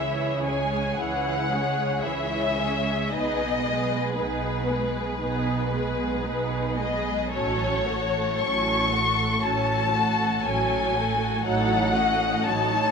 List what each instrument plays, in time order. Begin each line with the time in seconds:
Already playing: double bass section C#2, cello section C#3, viola section E3 E4, violin section G#4 C#5 E5
0.44 viola section G#3 C#4, violin section G#4 C#5 G#5
0.98 double bass section C#2, cello section C#3, viola section E3 E4, violin section G#4 C#5 F#5
1.52 viola section G#3 C#4, violin section G#4 C#5
2.04 double bass section C#2, cello section C#3, viola section E3 E4, violin section G#4 C#5 E5
2.59 viola section G#3 C#4, violin section G#4 C#5
3.11 double bass section B1, cello section B2, viola section B3 D#4, violin section G#4 B4 D#5
3.65 viola section G#3 B3, violin section G#4 B4
4.15 double bass section B1, cello section B2, viola section B3 D#4, violin section G#4 B4
4.69 viola section G#3 B3, violin section G#4 B4
5.20 double bass section B1, cello section B2, viola section B3 D#4, violin section G#4 B4
5.72 viola section G#3 B3, violin section G#4 B4
6.25 double bass section B1, cello section B2, viola section B3 D#4, violin section G#4 B4
6.78 viola section G#3 B3, violin section G#4 B4 D#5
7.31 double bass section A1, cello section A2, viola section F#3 C#4, violin section A4 C#5
7.85 viola section A3, violin section F#4 A4
8.41 double bass section A1, cello section A2, viola section F#3 C#4, violin section A4 C#5 C#6
8.92 viola section A3, violin section F#4 A4
9.42 double bass section A1, cello section A2, viola section F#3 C#4, violin section A4 C#5 A5
9.91 viola section A3, violin section F#4 A4
10.44 double bass section A1, cello section A2, viola section F#3 C#4, violin section A4 C#5 G#5
10.95 viola section A3, violin section F#4 A4
11.44 double bass section A1, cello section A2, viola section F#3 D#4, violin section A4 C#5 F#5
11.94 viola section A3 C#4, violin section F#4 D#5
12.44 double bass section A1, cello section A2, viola section F#3 D#4, violin section A4 C#5 A5